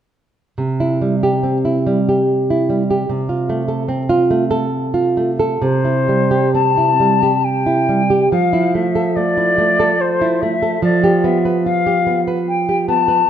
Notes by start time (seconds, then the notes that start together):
0.58 C3
0.80 E4
1.02 G3
1.23 G4
1.43 C4
1.65 E4
1.87 G3
2.09 G4
2.50 E4
2.69 G3
2.90 G4
3.09 C3
3.29 F4
3.49 A3
3.68 A4
3.89 C4
4.09 F4
4.31 A3
4.51 A4
4.94 F4
5.17 A3
5.39 A4
5.62 C3 C5
5.85 E4
6.08 G3
6.31 G4
6.54 C4 A5
6.78 E4
7.00 G3
7.23 G4
7.44 G5
7.66 E4
7.89 G3
8.10 G4
8.32 F3 F5
8.53 E4
8.74 A3 E5
8.95 A4
9.15 A3 D5
9.37 E4
9.58 A3
9.80 A4
10.00 C5
10.21 E4
10.41 A3 E5
10.62 A4
10.82 F3 D5
11.04 G4
11.24 B3 E5
11.45 B4
11.66 F4 F5
11.86 G4
12.07 B3
12.28 B4
12.48 G5
12.69 G4
12.88 B3 A5
13.08 B4